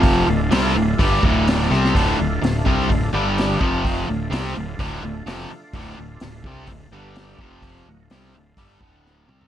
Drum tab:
HH |o---o---o---o---|o---o---o---o---|o---o---o---o---|o---o---o---o---|
SD |----o-------o-oo|----o--o----o---|----o-------o---|-o--o-------o---|
T2 |----------------|----------------|----------------|----------------|
FT |----------------|----------------|----------------|----------------|
BD |o-------o-o-----|o-----o-o-----o-|o-------o-------|o-----o-o-----o-|

HH |o---o---o-------|
SD |-o--o-------o---|
T2 |--------------o-|
FT |---------------o|
BD |o-------o-o-----|